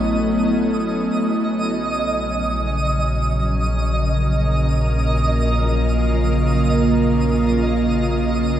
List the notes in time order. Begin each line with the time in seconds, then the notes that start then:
Already playing: A1 F#3 A3 B3 C#4 E4 A4 D#5
1.15 A#1 C#3
3.23 A#4
3.62 A#3
4.18 F4